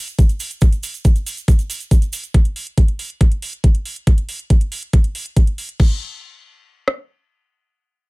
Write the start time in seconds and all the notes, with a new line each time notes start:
0.08 closed hi-hat, cabasa
0.19 kick, closed hi-hat, cabasa
0.29 closed hi-hat, cabasa
0.40 open hi-hat, cabasa
0.51 closed hi-hat, cabasa
0.61 kick, closed hi-hat, cabasa
0.72 closed hi-hat, cabasa
0.83 open hi-hat, cabasa
0.94 closed hi-hat, cabasa
1.05 kick, closed hi-hat, cabasa
1.16 closed hi-hat, cabasa
1.26 open hi-hat, cabasa
1.37 closed hi-hat, cabasa
1.48 kick, closed hi-hat, cabasa
1.59 closed hi-hat, cabasa
1.70 open hi-hat, cabasa
1.80 closed hi-hat, cabasa
1.91 kick, closed hi-hat, cabasa
2.02 closed hi-hat, cabasa
2.13 open hi-hat, cabasa
2.24 closed hi-hat, cabasa
2.34 kick, closed hi-hat
2.45 closed hi-hat
2.56 open hi-hat
2.67 closed hi-hat
2.78 kick, closed hi-hat
2.88 closed hi-hat
2.99 open hi-hat
3.10 closed hi-hat
3.21 kick, closed hi-hat
3.32 closed hi-hat
3.42 open hi-hat
3.53 closed hi-hat
3.64 kick, closed hi-hat
3.75 closed hi-hat
3.85 open hi-hat
3.96 closed hi-hat
4.07 kick, closed hi-hat
4.18 closed hi-hat
4.29 open hi-hat
4.39 closed hi-hat
4.50 kick, closed hi-hat
4.61 closed hi-hat
4.72 open hi-hat
4.83 closed hi-hat
4.93 kick, closed hi-hat
5.04 closed hi-hat
5.15 open hi-hat
5.26 closed hi-hat
5.37 kick, closed hi-hat
5.47 closed hi-hat
5.58 open hi-hat
5.69 closed hi-hat
5.80 kick, crash
6.88 cross-stick